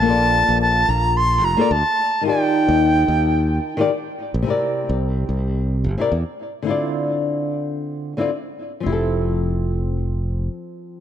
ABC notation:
X:1
M:4/4
L:1/16
Q:"Swing 16ths" 1/4=109
K:F
V:1 name="Flute"
a4 a2 b2 c'2 b2 a4 | g12 z4 | z16 | z16 |
z16 |]
V:2 name="Nylon-string guitar"
[B,FAcd]8- [B,FAcd]3 [B,FAcd] z4 | [_E,_EFGd]8- [E,EFGd]3 [E,EFGd] z4 | [C,CEBd]8- [C,CEBd]3 [C,CEBd] z4 | [D,CEFd]8- [D,CEFd]3 [D,CEFd] z4 |
[F,CEGA]16 |]
V:3 name="Fingered electric bass" clef=bass
B,,,3 B,,,3 B,,,4 F,,, z D,, z3 | z3 _E,,3 E,,4 z4 z B,,, | z3 C,,3 C,,4 G,,, z E,, z3 | z16 |
F,,,12 z4 |]